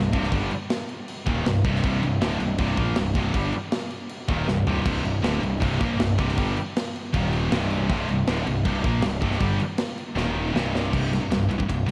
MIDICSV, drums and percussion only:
0, 0, Header, 1, 2, 480
1, 0, Start_track
1, 0, Key_signature, -3, "minor"
1, 0, Tempo, 379027
1, 399, Time_signature, 4, 2, 24, 8
1, 15084, End_track
2, 0, Start_track
2, 0, Title_t, "Drums"
2, 169, Note_on_c, 9, 36, 116
2, 170, Note_on_c, 9, 49, 63
2, 295, Note_on_c, 9, 38, 34
2, 296, Note_off_c, 9, 36, 0
2, 297, Note_off_c, 9, 49, 0
2, 404, Note_on_c, 9, 49, 87
2, 405, Note_on_c, 9, 36, 110
2, 422, Note_off_c, 9, 38, 0
2, 531, Note_off_c, 9, 49, 0
2, 532, Note_off_c, 9, 36, 0
2, 643, Note_on_c, 9, 49, 69
2, 770, Note_off_c, 9, 49, 0
2, 885, Note_on_c, 9, 49, 81
2, 891, Note_on_c, 9, 38, 115
2, 1012, Note_off_c, 9, 49, 0
2, 1017, Note_off_c, 9, 38, 0
2, 1123, Note_on_c, 9, 49, 60
2, 1250, Note_off_c, 9, 49, 0
2, 1365, Note_on_c, 9, 49, 84
2, 1492, Note_off_c, 9, 49, 0
2, 1604, Note_on_c, 9, 36, 116
2, 1606, Note_on_c, 9, 49, 64
2, 1730, Note_off_c, 9, 36, 0
2, 1733, Note_off_c, 9, 49, 0
2, 1848, Note_on_c, 9, 49, 78
2, 1853, Note_on_c, 9, 38, 125
2, 1975, Note_off_c, 9, 49, 0
2, 1980, Note_off_c, 9, 38, 0
2, 2085, Note_on_c, 9, 36, 105
2, 2087, Note_on_c, 9, 49, 63
2, 2212, Note_off_c, 9, 36, 0
2, 2213, Note_off_c, 9, 49, 0
2, 2220, Note_on_c, 9, 38, 34
2, 2326, Note_on_c, 9, 36, 115
2, 2331, Note_on_c, 9, 49, 84
2, 2346, Note_off_c, 9, 38, 0
2, 2453, Note_off_c, 9, 36, 0
2, 2457, Note_off_c, 9, 49, 0
2, 2567, Note_on_c, 9, 49, 71
2, 2694, Note_off_c, 9, 49, 0
2, 2804, Note_on_c, 9, 49, 84
2, 2809, Note_on_c, 9, 38, 116
2, 2931, Note_off_c, 9, 49, 0
2, 2936, Note_off_c, 9, 38, 0
2, 3038, Note_on_c, 9, 49, 71
2, 3165, Note_off_c, 9, 49, 0
2, 3269, Note_on_c, 9, 49, 87
2, 3276, Note_on_c, 9, 36, 114
2, 3395, Note_off_c, 9, 49, 0
2, 3403, Note_off_c, 9, 36, 0
2, 3512, Note_on_c, 9, 36, 107
2, 3513, Note_on_c, 9, 49, 69
2, 3639, Note_off_c, 9, 36, 0
2, 3640, Note_off_c, 9, 49, 0
2, 3744, Note_on_c, 9, 49, 92
2, 3749, Note_on_c, 9, 38, 121
2, 3870, Note_off_c, 9, 49, 0
2, 3875, Note_off_c, 9, 38, 0
2, 3988, Note_on_c, 9, 49, 66
2, 3990, Note_on_c, 9, 36, 109
2, 4115, Note_off_c, 9, 49, 0
2, 4116, Note_off_c, 9, 36, 0
2, 4231, Note_on_c, 9, 36, 107
2, 4236, Note_on_c, 9, 49, 89
2, 4357, Note_off_c, 9, 36, 0
2, 4363, Note_off_c, 9, 49, 0
2, 4464, Note_on_c, 9, 49, 64
2, 4591, Note_off_c, 9, 49, 0
2, 4708, Note_on_c, 9, 49, 87
2, 4713, Note_on_c, 9, 38, 111
2, 4835, Note_off_c, 9, 49, 0
2, 4840, Note_off_c, 9, 38, 0
2, 4945, Note_on_c, 9, 49, 68
2, 5072, Note_off_c, 9, 49, 0
2, 5184, Note_on_c, 9, 49, 82
2, 5310, Note_off_c, 9, 49, 0
2, 5427, Note_on_c, 9, 36, 111
2, 5432, Note_on_c, 9, 49, 63
2, 5554, Note_off_c, 9, 36, 0
2, 5558, Note_off_c, 9, 49, 0
2, 5671, Note_on_c, 9, 38, 73
2, 5798, Note_off_c, 9, 38, 0
2, 5913, Note_on_c, 9, 43, 86
2, 6039, Note_off_c, 9, 43, 0
2, 6150, Note_on_c, 9, 36, 110
2, 6152, Note_on_c, 9, 49, 89
2, 6152, Note_on_c, 9, 57, 100
2, 6276, Note_off_c, 9, 36, 0
2, 6279, Note_off_c, 9, 49, 0
2, 6279, Note_off_c, 9, 57, 0
2, 6396, Note_on_c, 9, 49, 63
2, 6523, Note_off_c, 9, 49, 0
2, 6635, Note_on_c, 9, 49, 83
2, 6640, Note_on_c, 9, 38, 117
2, 6761, Note_off_c, 9, 49, 0
2, 6766, Note_off_c, 9, 38, 0
2, 6876, Note_on_c, 9, 49, 65
2, 7003, Note_off_c, 9, 49, 0
2, 7117, Note_on_c, 9, 36, 109
2, 7125, Note_on_c, 9, 49, 93
2, 7244, Note_off_c, 9, 36, 0
2, 7251, Note_off_c, 9, 49, 0
2, 7354, Note_on_c, 9, 49, 73
2, 7356, Note_on_c, 9, 36, 119
2, 7481, Note_off_c, 9, 49, 0
2, 7482, Note_off_c, 9, 36, 0
2, 7593, Note_on_c, 9, 49, 91
2, 7598, Note_on_c, 9, 38, 113
2, 7720, Note_off_c, 9, 49, 0
2, 7725, Note_off_c, 9, 38, 0
2, 7835, Note_on_c, 9, 36, 104
2, 7837, Note_on_c, 9, 49, 62
2, 7960, Note_on_c, 9, 38, 32
2, 7962, Note_off_c, 9, 36, 0
2, 7964, Note_off_c, 9, 49, 0
2, 8077, Note_on_c, 9, 36, 109
2, 8077, Note_on_c, 9, 49, 93
2, 8087, Note_off_c, 9, 38, 0
2, 8203, Note_off_c, 9, 36, 0
2, 8204, Note_off_c, 9, 49, 0
2, 8316, Note_on_c, 9, 49, 69
2, 8443, Note_off_c, 9, 49, 0
2, 8565, Note_on_c, 9, 49, 96
2, 8570, Note_on_c, 9, 38, 123
2, 8691, Note_off_c, 9, 49, 0
2, 8696, Note_off_c, 9, 38, 0
2, 8807, Note_on_c, 9, 49, 63
2, 8934, Note_off_c, 9, 49, 0
2, 9040, Note_on_c, 9, 49, 80
2, 9042, Note_on_c, 9, 36, 111
2, 9166, Note_off_c, 9, 49, 0
2, 9168, Note_off_c, 9, 36, 0
2, 9277, Note_on_c, 9, 49, 71
2, 9403, Note_off_c, 9, 49, 0
2, 9520, Note_on_c, 9, 49, 80
2, 9525, Note_on_c, 9, 38, 117
2, 9647, Note_off_c, 9, 49, 0
2, 9652, Note_off_c, 9, 38, 0
2, 9758, Note_on_c, 9, 49, 63
2, 9884, Note_off_c, 9, 49, 0
2, 9999, Note_on_c, 9, 36, 112
2, 10000, Note_on_c, 9, 49, 85
2, 10126, Note_off_c, 9, 36, 0
2, 10127, Note_off_c, 9, 49, 0
2, 10242, Note_on_c, 9, 49, 65
2, 10368, Note_off_c, 9, 49, 0
2, 10476, Note_on_c, 9, 49, 85
2, 10481, Note_on_c, 9, 38, 123
2, 10603, Note_off_c, 9, 49, 0
2, 10608, Note_off_c, 9, 38, 0
2, 10723, Note_on_c, 9, 49, 69
2, 10849, Note_off_c, 9, 49, 0
2, 10956, Note_on_c, 9, 49, 79
2, 10958, Note_on_c, 9, 36, 105
2, 11082, Note_off_c, 9, 49, 0
2, 11084, Note_off_c, 9, 36, 0
2, 11197, Note_on_c, 9, 36, 108
2, 11200, Note_on_c, 9, 49, 65
2, 11324, Note_off_c, 9, 36, 0
2, 11326, Note_off_c, 9, 49, 0
2, 11423, Note_on_c, 9, 49, 88
2, 11429, Note_on_c, 9, 38, 119
2, 11550, Note_off_c, 9, 49, 0
2, 11555, Note_off_c, 9, 38, 0
2, 11668, Note_on_c, 9, 49, 64
2, 11674, Note_on_c, 9, 36, 109
2, 11794, Note_on_c, 9, 38, 32
2, 11795, Note_off_c, 9, 49, 0
2, 11801, Note_off_c, 9, 36, 0
2, 11907, Note_on_c, 9, 49, 89
2, 11912, Note_on_c, 9, 36, 113
2, 11920, Note_off_c, 9, 38, 0
2, 12033, Note_off_c, 9, 49, 0
2, 12039, Note_off_c, 9, 36, 0
2, 12151, Note_on_c, 9, 49, 70
2, 12277, Note_off_c, 9, 49, 0
2, 12383, Note_on_c, 9, 49, 96
2, 12388, Note_on_c, 9, 38, 118
2, 12510, Note_off_c, 9, 49, 0
2, 12515, Note_off_c, 9, 38, 0
2, 12633, Note_on_c, 9, 49, 67
2, 12760, Note_off_c, 9, 49, 0
2, 12882, Note_on_c, 9, 38, 69
2, 13008, Note_off_c, 9, 38, 0
2, 13371, Note_on_c, 9, 38, 100
2, 13498, Note_off_c, 9, 38, 0
2, 13616, Note_on_c, 9, 38, 98
2, 13743, Note_off_c, 9, 38, 0
2, 13846, Note_on_c, 9, 36, 105
2, 13852, Note_on_c, 9, 57, 116
2, 13972, Note_off_c, 9, 36, 0
2, 13979, Note_off_c, 9, 57, 0
2, 14097, Note_on_c, 9, 51, 68
2, 14102, Note_on_c, 9, 38, 32
2, 14224, Note_off_c, 9, 51, 0
2, 14229, Note_off_c, 9, 38, 0
2, 14331, Note_on_c, 9, 51, 94
2, 14336, Note_on_c, 9, 38, 112
2, 14457, Note_off_c, 9, 51, 0
2, 14462, Note_off_c, 9, 38, 0
2, 14573, Note_on_c, 9, 51, 70
2, 14690, Note_on_c, 9, 36, 80
2, 14700, Note_off_c, 9, 51, 0
2, 14810, Note_off_c, 9, 36, 0
2, 14810, Note_on_c, 9, 36, 92
2, 14812, Note_on_c, 9, 51, 97
2, 14937, Note_off_c, 9, 36, 0
2, 14939, Note_off_c, 9, 51, 0
2, 15084, End_track
0, 0, End_of_file